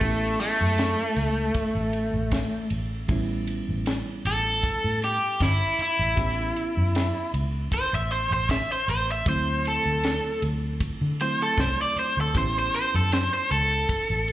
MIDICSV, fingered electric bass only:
0, 0, Header, 1, 3, 480
1, 0, Start_track
1, 0, Tempo, 771208
1, 9, Time_signature, 4, 2, 24, 8
1, 8913, End_track
2, 0, Start_track
2, 0, Title_t, "Fingered electric bass"
2, 0, Program_c, 0, 33
2, 8, Note_on_c, 0, 33, 99
2, 215, Note_off_c, 0, 33, 0
2, 379, Note_on_c, 0, 42, 83
2, 585, Note_off_c, 0, 42, 0
2, 725, Note_on_c, 0, 37, 83
2, 933, Note_off_c, 0, 37, 0
2, 1090, Note_on_c, 0, 33, 81
2, 1300, Note_off_c, 0, 33, 0
2, 1330, Note_on_c, 0, 33, 84
2, 1540, Note_off_c, 0, 33, 0
2, 1684, Note_on_c, 0, 33, 89
2, 1893, Note_off_c, 0, 33, 0
2, 1924, Note_on_c, 0, 33, 96
2, 2244, Note_off_c, 0, 33, 0
2, 2295, Note_on_c, 0, 33, 84
2, 2503, Note_off_c, 0, 33, 0
2, 2645, Note_on_c, 0, 33, 82
2, 2965, Note_off_c, 0, 33, 0
2, 3015, Note_on_c, 0, 45, 84
2, 3222, Note_off_c, 0, 45, 0
2, 3366, Note_on_c, 0, 31, 87
2, 3478, Note_off_c, 0, 31, 0
2, 3730, Note_on_c, 0, 33, 90
2, 3828, Note_off_c, 0, 33, 0
2, 3843, Note_on_c, 0, 33, 97
2, 4051, Note_off_c, 0, 33, 0
2, 4215, Note_on_c, 0, 42, 85
2, 4422, Note_off_c, 0, 42, 0
2, 4566, Note_on_c, 0, 37, 81
2, 4773, Note_off_c, 0, 37, 0
2, 4936, Note_on_c, 0, 33, 79
2, 5143, Note_off_c, 0, 33, 0
2, 5171, Note_on_c, 0, 33, 91
2, 5380, Note_off_c, 0, 33, 0
2, 5526, Note_on_c, 0, 33, 95
2, 5733, Note_off_c, 0, 33, 0
2, 5765, Note_on_c, 0, 38, 96
2, 6085, Note_off_c, 0, 38, 0
2, 6134, Note_on_c, 0, 38, 77
2, 6342, Note_off_c, 0, 38, 0
2, 6487, Note_on_c, 0, 38, 84
2, 6806, Note_off_c, 0, 38, 0
2, 6855, Note_on_c, 0, 50, 81
2, 7062, Note_off_c, 0, 50, 0
2, 7207, Note_on_c, 0, 36, 87
2, 7318, Note_off_c, 0, 36, 0
2, 7575, Note_on_c, 0, 38, 89
2, 7670, Note_off_c, 0, 38, 0
2, 7687, Note_on_c, 0, 33, 100
2, 7894, Note_off_c, 0, 33, 0
2, 8056, Note_on_c, 0, 42, 84
2, 8263, Note_off_c, 0, 42, 0
2, 8408, Note_on_c, 0, 37, 82
2, 8615, Note_off_c, 0, 37, 0
2, 8776, Note_on_c, 0, 33, 83
2, 8913, Note_off_c, 0, 33, 0
2, 8913, End_track
3, 0, Start_track
3, 0, Title_t, "Muted fingered electric bass strokes"
3, 3602, Note_on_c, 9, 29, 34
3, 3664, Note_off_c, 9, 29, 0
3, 7445, Note_on_c, 9, 29, 35
3, 7507, Note_off_c, 9, 29, 0
3, 8913, End_track
0, 0, End_of_file